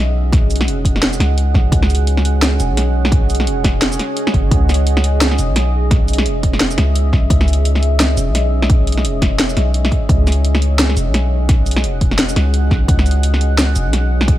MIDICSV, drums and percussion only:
0, 0, Header, 1, 2, 480
1, 0, Start_track
1, 0, Key_signature, 4, "minor"
1, 0, Tempo, 348837
1, 451, Time_signature, 4, 2, 24, 8
1, 19792, End_track
2, 0, Start_track
2, 0, Title_t, "Drums"
2, 447, Note_on_c, 9, 36, 112
2, 456, Note_on_c, 9, 40, 51
2, 456, Note_on_c, 9, 42, 77
2, 585, Note_off_c, 9, 36, 0
2, 593, Note_off_c, 9, 40, 0
2, 593, Note_off_c, 9, 42, 0
2, 695, Note_on_c, 9, 42, 47
2, 695, Note_on_c, 9, 82, 38
2, 765, Note_off_c, 9, 42, 0
2, 765, Note_on_c, 9, 42, 62
2, 833, Note_off_c, 9, 82, 0
2, 835, Note_on_c, 9, 40, 76
2, 902, Note_off_c, 9, 42, 0
2, 936, Note_on_c, 9, 42, 77
2, 973, Note_off_c, 9, 40, 0
2, 1074, Note_off_c, 9, 42, 0
2, 1167, Note_on_c, 9, 36, 59
2, 1176, Note_on_c, 9, 42, 66
2, 1305, Note_off_c, 9, 36, 0
2, 1313, Note_off_c, 9, 42, 0
2, 1318, Note_on_c, 9, 40, 53
2, 1413, Note_on_c, 9, 38, 120
2, 1413, Note_on_c, 9, 42, 77
2, 1456, Note_off_c, 9, 40, 0
2, 1551, Note_off_c, 9, 38, 0
2, 1551, Note_off_c, 9, 42, 0
2, 1555, Note_on_c, 9, 82, 67
2, 1656, Note_on_c, 9, 40, 77
2, 1656, Note_on_c, 9, 42, 61
2, 1693, Note_off_c, 9, 82, 0
2, 1793, Note_off_c, 9, 40, 0
2, 1793, Note_off_c, 9, 42, 0
2, 1894, Note_on_c, 9, 42, 77
2, 2032, Note_off_c, 9, 42, 0
2, 2126, Note_on_c, 9, 36, 63
2, 2134, Note_on_c, 9, 40, 51
2, 2264, Note_off_c, 9, 36, 0
2, 2271, Note_off_c, 9, 40, 0
2, 2367, Note_on_c, 9, 36, 118
2, 2373, Note_on_c, 9, 42, 78
2, 2504, Note_off_c, 9, 36, 0
2, 2511, Note_off_c, 9, 42, 0
2, 2512, Note_on_c, 9, 40, 82
2, 2613, Note_on_c, 9, 42, 51
2, 2613, Note_on_c, 9, 82, 40
2, 2649, Note_off_c, 9, 40, 0
2, 2679, Note_off_c, 9, 42, 0
2, 2679, Note_on_c, 9, 42, 65
2, 2751, Note_off_c, 9, 82, 0
2, 2817, Note_off_c, 9, 42, 0
2, 2851, Note_on_c, 9, 42, 79
2, 2989, Note_off_c, 9, 42, 0
2, 2992, Note_on_c, 9, 40, 55
2, 3096, Note_on_c, 9, 42, 66
2, 3129, Note_off_c, 9, 40, 0
2, 3234, Note_off_c, 9, 42, 0
2, 3335, Note_on_c, 9, 38, 115
2, 3335, Note_on_c, 9, 40, 87
2, 3335, Note_on_c, 9, 42, 81
2, 3335, Note_on_c, 9, 82, 71
2, 3473, Note_off_c, 9, 38, 0
2, 3473, Note_off_c, 9, 40, 0
2, 3473, Note_off_c, 9, 42, 0
2, 3473, Note_off_c, 9, 82, 0
2, 3574, Note_on_c, 9, 42, 65
2, 3574, Note_on_c, 9, 82, 69
2, 3712, Note_off_c, 9, 42, 0
2, 3712, Note_off_c, 9, 82, 0
2, 3816, Note_on_c, 9, 40, 54
2, 3816, Note_on_c, 9, 42, 79
2, 3953, Note_off_c, 9, 40, 0
2, 3953, Note_off_c, 9, 42, 0
2, 4195, Note_on_c, 9, 40, 88
2, 4291, Note_on_c, 9, 36, 120
2, 4295, Note_on_c, 9, 42, 82
2, 4332, Note_off_c, 9, 40, 0
2, 4428, Note_off_c, 9, 36, 0
2, 4433, Note_off_c, 9, 42, 0
2, 4538, Note_on_c, 9, 42, 51
2, 4538, Note_on_c, 9, 82, 39
2, 4605, Note_off_c, 9, 42, 0
2, 4605, Note_on_c, 9, 42, 65
2, 4675, Note_off_c, 9, 82, 0
2, 4677, Note_on_c, 9, 40, 55
2, 4743, Note_off_c, 9, 42, 0
2, 4777, Note_on_c, 9, 42, 84
2, 4814, Note_off_c, 9, 40, 0
2, 4914, Note_off_c, 9, 42, 0
2, 5011, Note_on_c, 9, 36, 59
2, 5016, Note_on_c, 9, 40, 85
2, 5016, Note_on_c, 9, 42, 68
2, 5148, Note_off_c, 9, 36, 0
2, 5153, Note_off_c, 9, 40, 0
2, 5153, Note_off_c, 9, 42, 0
2, 5255, Note_on_c, 9, 38, 117
2, 5255, Note_on_c, 9, 42, 82
2, 5392, Note_off_c, 9, 38, 0
2, 5392, Note_off_c, 9, 42, 0
2, 5398, Note_on_c, 9, 82, 66
2, 5496, Note_on_c, 9, 40, 53
2, 5496, Note_on_c, 9, 42, 67
2, 5535, Note_off_c, 9, 82, 0
2, 5634, Note_off_c, 9, 40, 0
2, 5634, Note_off_c, 9, 42, 0
2, 5733, Note_on_c, 9, 42, 82
2, 5871, Note_off_c, 9, 42, 0
2, 5876, Note_on_c, 9, 40, 83
2, 5971, Note_on_c, 9, 36, 60
2, 5974, Note_on_c, 9, 42, 37
2, 6013, Note_off_c, 9, 40, 0
2, 6108, Note_off_c, 9, 36, 0
2, 6111, Note_off_c, 9, 42, 0
2, 6211, Note_on_c, 9, 36, 122
2, 6213, Note_on_c, 9, 42, 82
2, 6349, Note_off_c, 9, 36, 0
2, 6351, Note_off_c, 9, 42, 0
2, 6457, Note_on_c, 9, 40, 58
2, 6457, Note_on_c, 9, 42, 52
2, 6457, Note_on_c, 9, 82, 37
2, 6525, Note_off_c, 9, 42, 0
2, 6525, Note_on_c, 9, 42, 68
2, 6594, Note_off_c, 9, 40, 0
2, 6594, Note_off_c, 9, 82, 0
2, 6663, Note_off_c, 9, 42, 0
2, 6696, Note_on_c, 9, 42, 83
2, 6834, Note_off_c, 9, 42, 0
2, 6836, Note_on_c, 9, 40, 82
2, 6935, Note_on_c, 9, 42, 73
2, 6974, Note_off_c, 9, 40, 0
2, 7073, Note_off_c, 9, 42, 0
2, 7174, Note_on_c, 9, 38, 126
2, 7174, Note_on_c, 9, 42, 83
2, 7174, Note_on_c, 9, 82, 71
2, 7312, Note_off_c, 9, 38, 0
2, 7312, Note_off_c, 9, 42, 0
2, 7312, Note_off_c, 9, 82, 0
2, 7313, Note_on_c, 9, 40, 56
2, 7410, Note_on_c, 9, 42, 68
2, 7410, Note_on_c, 9, 82, 69
2, 7450, Note_off_c, 9, 40, 0
2, 7548, Note_off_c, 9, 42, 0
2, 7548, Note_off_c, 9, 82, 0
2, 7649, Note_on_c, 9, 40, 82
2, 7649, Note_on_c, 9, 42, 81
2, 7787, Note_off_c, 9, 40, 0
2, 7787, Note_off_c, 9, 42, 0
2, 8131, Note_on_c, 9, 36, 127
2, 8134, Note_on_c, 9, 40, 55
2, 8134, Note_on_c, 9, 42, 82
2, 8269, Note_off_c, 9, 36, 0
2, 8272, Note_off_c, 9, 40, 0
2, 8272, Note_off_c, 9, 42, 0
2, 8370, Note_on_c, 9, 42, 54
2, 8370, Note_on_c, 9, 82, 35
2, 8441, Note_off_c, 9, 42, 0
2, 8441, Note_on_c, 9, 42, 68
2, 8508, Note_off_c, 9, 82, 0
2, 8510, Note_on_c, 9, 40, 86
2, 8578, Note_off_c, 9, 42, 0
2, 8610, Note_on_c, 9, 42, 82
2, 8647, Note_off_c, 9, 40, 0
2, 8748, Note_off_c, 9, 42, 0
2, 8851, Note_on_c, 9, 36, 68
2, 8852, Note_on_c, 9, 42, 72
2, 8988, Note_off_c, 9, 36, 0
2, 8989, Note_off_c, 9, 42, 0
2, 8991, Note_on_c, 9, 40, 55
2, 9087, Note_on_c, 9, 38, 125
2, 9087, Note_on_c, 9, 42, 87
2, 9129, Note_off_c, 9, 40, 0
2, 9225, Note_off_c, 9, 38, 0
2, 9225, Note_off_c, 9, 42, 0
2, 9230, Note_on_c, 9, 82, 66
2, 9327, Note_on_c, 9, 40, 83
2, 9327, Note_on_c, 9, 42, 70
2, 9368, Note_off_c, 9, 82, 0
2, 9464, Note_off_c, 9, 40, 0
2, 9464, Note_off_c, 9, 42, 0
2, 9570, Note_on_c, 9, 42, 87
2, 9708, Note_off_c, 9, 42, 0
2, 9809, Note_on_c, 9, 36, 63
2, 9811, Note_on_c, 9, 40, 52
2, 9946, Note_off_c, 9, 36, 0
2, 9949, Note_off_c, 9, 40, 0
2, 10047, Note_on_c, 9, 36, 126
2, 10052, Note_on_c, 9, 42, 82
2, 10185, Note_off_c, 9, 36, 0
2, 10189, Note_off_c, 9, 42, 0
2, 10193, Note_on_c, 9, 40, 75
2, 10292, Note_on_c, 9, 42, 52
2, 10292, Note_on_c, 9, 82, 36
2, 10330, Note_off_c, 9, 40, 0
2, 10362, Note_off_c, 9, 42, 0
2, 10362, Note_on_c, 9, 42, 68
2, 10429, Note_off_c, 9, 82, 0
2, 10500, Note_off_c, 9, 42, 0
2, 10530, Note_on_c, 9, 42, 86
2, 10668, Note_off_c, 9, 42, 0
2, 10669, Note_on_c, 9, 40, 50
2, 10769, Note_on_c, 9, 42, 66
2, 10807, Note_off_c, 9, 40, 0
2, 10906, Note_off_c, 9, 42, 0
2, 11008, Note_on_c, 9, 38, 127
2, 11008, Note_on_c, 9, 40, 78
2, 11008, Note_on_c, 9, 42, 84
2, 11008, Note_on_c, 9, 82, 66
2, 11146, Note_off_c, 9, 38, 0
2, 11146, Note_off_c, 9, 40, 0
2, 11146, Note_off_c, 9, 42, 0
2, 11146, Note_off_c, 9, 82, 0
2, 11247, Note_on_c, 9, 42, 68
2, 11247, Note_on_c, 9, 82, 63
2, 11385, Note_off_c, 9, 42, 0
2, 11385, Note_off_c, 9, 82, 0
2, 11488, Note_on_c, 9, 40, 51
2, 11488, Note_on_c, 9, 42, 82
2, 11626, Note_off_c, 9, 40, 0
2, 11626, Note_off_c, 9, 42, 0
2, 11867, Note_on_c, 9, 40, 84
2, 11965, Note_on_c, 9, 36, 121
2, 11967, Note_on_c, 9, 42, 78
2, 12005, Note_off_c, 9, 40, 0
2, 12103, Note_off_c, 9, 36, 0
2, 12105, Note_off_c, 9, 42, 0
2, 12209, Note_on_c, 9, 42, 49
2, 12279, Note_off_c, 9, 42, 0
2, 12279, Note_on_c, 9, 42, 62
2, 12350, Note_on_c, 9, 40, 52
2, 12417, Note_off_c, 9, 42, 0
2, 12449, Note_on_c, 9, 42, 79
2, 12487, Note_off_c, 9, 40, 0
2, 12586, Note_off_c, 9, 42, 0
2, 12684, Note_on_c, 9, 36, 63
2, 12687, Note_on_c, 9, 40, 78
2, 12687, Note_on_c, 9, 42, 65
2, 12822, Note_off_c, 9, 36, 0
2, 12824, Note_off_c, 9, 40, 0
2, 12824, Note_off_c, 9, 42, 0
2, 12927, Note_on_c, 9, 38, 126
2, 12927, Note_on_c, 9, 42, 83
2, 13065, Note_off_c, 9, 38, 0
2, 13065, Note_off_c, 9, 42, 0
2, 13066, Note_on_c, 9, 82, 62
2, 13164, Note_on_c, 9, 40, 51
2, 13164, Note_on_c, 9, 42, 66
2, 13204, Note_off_c, 9, 82, 0
2, 13302, Note_off_c, 9, 40, 0
2, 13302, Note_off_c, 9, 42, 0
2, 13406, Note_on_c, 9, 42, 77
2, 13543, Note_off_c, 9, 42, 0
2, 13549, Note_on_c, 9, 40, 75
2, 13644, Note_on_c, 9, 36, 66
2, 13649, Note_on_c, 9, 42, 35
2, 13687, Note_off_c, 9, 40, 0
2, 13782, Note_off_c, 9, 36, 0
2, 13787, Note_off_c, 9, 42, 0
2, 13886, Note_on_c, 9, 36, 120
2, 13892, Note_on_c, 9, 42, 77
2, 14023, Note_off_c, 9, 36, 0
2, 14029, Note_off_c, 9, 42, 0
2, 14131, Note_on_c, 9, 40, 53
2, 14131, Note_on_c, 9, 42, 48
2, 14131, Note_on_c, 9, 82, 37
2, 14202, Note_off_c, 9, 42, 0
2, 14202, Note_on_c, 9, 42, 61
2, 14269, Note_off_c, 9, 40, 0
2, 14269, Note_off_c, 9, 82, 0
2, 14339, Note_off_c, 9, 42, 0
2, 14373, Note_on_c, 9, 42, 76
2, 14510, Note_off_c, 9, 42, 0
2, 14512, Note_on_c, 9, 40, 76
2, 14613, Note_on_c, 9, 42, 63
2, 14649, Note_off_c, 9, 40, 0
2, 14750, Note_off_c, 9, 42, 0
2, 14850, Note_on_c, 9, 38, 127
2, 14850, Note_on_c, 9, 42, 77
2, 14850, Note_on_c, 9, 82, 69
2, 14987, Note_off_c, 9, 38, 0
2, 14987, Note_off_c, 9, 42, 0
2, 14987, Note_off_c, 9, 82, 0
2, 14992, Note_on_c, 9, 40, 51
2, 15091, Note_on_c, 9, 42, 63
2, 15091, Note_on_c, 9, 82, 67
2, 15130, Note_off_c, 9, 40, 0
2, 15229, Note_off_c, 9, 42, 0
2, 15229, Note_off_c, 9, 82, 0
2, 15331, Note_on_c, 9, 40, 76
2, 15331, Note_on_c, 9, 42, 75
2, 15469, Note_off_c, 9, 40, 0
2, 15469, Note_off_c, 9, 42, 0
2, 15809, Note_on_c, 9, 36, 119
2, 15810, Note_on_c, 9, 40, 51
2, 15810, Note_on_c, 9, 42, 78
2, 15946, Note_off_c, 9, 36, 0
2, 15947, Note_off_c, 9, 40, 0
2, 15947, Note_off_c, 9, 42, 0
2, 16048, Note_on_c, 9, 42, 46
2, 16048, Note_on_c, 9, 82, 38
2, 16117, Note_off_c, 9, 42, 0
2, 16117, Note_on_c, 9, 42, 63
2, 16186, Note_off_c, 9, 82, 0
2, 16188, Note_on_c, 9, 40, 83
2, 16255, Note_off_c, 9, 42, 0
2, 16290, Note_on_c, 9, 42, 77
2, 16326, Note_off_c, 9, 40, 0
2, 16428, Note_off_c, 9, 42, 0
2, 16528, Note_on_c, 9, 42, 64
2, 16530, Note_on_c, 9, 36, 62
2, 16666, Note_off_c, 9, 42, 0
2, 16667, Note_off_c, 9, 36, 0
2, 16669, Note_on_c, 9, 40, 54
2, 16769, Note_on_c, 9, 38, 124
2, 16769, Note_on_c, 9, 42, 79
2, 16807, Note_off_c, 9, 40, 0
2, 16907, Note_off_c, 9, 38, 0
2, 16907, Note_off_c, 9, 42, 0
2, 16910, Note_on_c, 9, 82, 65
2, 17011, Note_on_c, 9, 40, 76
2, 17011, Note_on_c, 9, 42, 62
2, 17047, Note_off_c, 9, 82, 0
2, 17149, Note_off_c, 9, 40, 0
2, 17149, Note_off_c, 9, 42, 0
2, 17252, Note_on_c, 9, 42, 77
2, 17389, Note_off_c, 9, 42, 0
2, 17488, Note_on_c, 9, 36, 62
2, 17492, Note_on_c, 9, 40, 54
2, 17626, Note_off_c, 9, 36, 0
2, 17630, Note_off_c, 9, 40, 0
2, 17728, Note_on_c, 9, 36, 118
2, 17734, Note_on_c, 9, 42, 79
2, 17866, Note_off_c, 9, 36, 0
2, 17871, Note_off_c, 9, 42, 0
2, 17872, Note_on_c, 9, 40, 76
2, 17970, Note_on_c, 9, 42, 48
2, 17970, Note_on_c, 9, 82, 40
2, 18010, Note_off_c, 9, 40, 0
2, 18040, Note_off_c, 9, 42, 0
2, 18040, Note_on_c, 9, 42, 63
2, 18108, Note_off_c, 9, 82, 0
2, 18178, Note_off_c, 9, 42, 0
2, 18210, Note_on_c, 9, 42, 79
2, 18347, Note_off_c, 9, 42, 0
2, 18352, Note_on_c, 9, 40, 55
2, 18452, Note_on_c, 9, 42, 65
2, 18490, Note_off_c, 9, 40, 0
2, 18589, Note_off_c, 9, 42, 0
2, 18692, Note_on_c, 9, 38, 114
2, 18692, Note_on_c, 9, 40, 83
2, 18692, Note_on_c, 9, 42, 83
2, 18692, Note_on_c, 9, 82, 69
2, 18830, Note_off_c, 9, 38, 0
2, 18830, Note_off_c, 9, 40, 0
2, 18830, Note_off_c, 9, 42, 0
2, 18830, Note_off_c, 9, 82, 0
2, 18930, Note_on_c, 9, 42, 66
2, 18930, Note_on_c, 9, 82, 73
2, 19067, Note_off_c, 9, 42, 0
2, 19067, Note_off_c, 9, 82, 0
2, 19170, Note_on_c, 9, 40, 56
2, 19170, Note_on_c, 9, 42, 76
2, 19307, Note_off_c, 9, 40, 0
2, 19307, Note_off_c, 9, 42, 0
2, 19551, Note_on_c, 9, 40, 86
2, 19648, Note_on_c, 9, 36, 119
2, 19652, Note_on_c, 9, 42, 82
2, 19688, Note_off_c, 9, 40, 0
2, 19786, Note_off_c, 9, 36, 0
2, 19789, Note_off_c, 9, 42, 0
2, 19792, End_track
0, 0, End_of_file